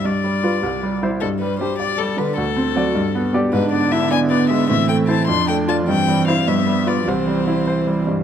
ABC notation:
X:1
M:6/8
L:1/8
Q:3/8=103
K:C
V:1 name="Violin"
d4- d z | A B c d A B | A4- A z | B d e ^g d e |
e g a c' g a | g2 f e2 d | c4- c z |]
V:2 name="Viola"
z2 F z2 E | z2 D z2 D | z2 C z2 B, | D3 B,3 |
C3 D3 | C3 B,3 | C4- C z |]
V:3 name="Grand piano"
G,, G, [FB] C,, G, [Ec] | G,, G, G d G, D, | D,, C [^Fd] G,, B, [Gd] | ^G,, B, E d B, ^G, |
A,, A, [Ec] F,, A, [Fd] | G,, G, [Ec] G,, G, [FB] | C,, G, E c G, G,, |]
V:4 name="Cello" clef=bass
z2 G, z2 G, | z2 G, z2 G, | z2 ^F, z2 G, | D,6 |
E,3 F,3 | E,3 F,3 | E,4- E, z |]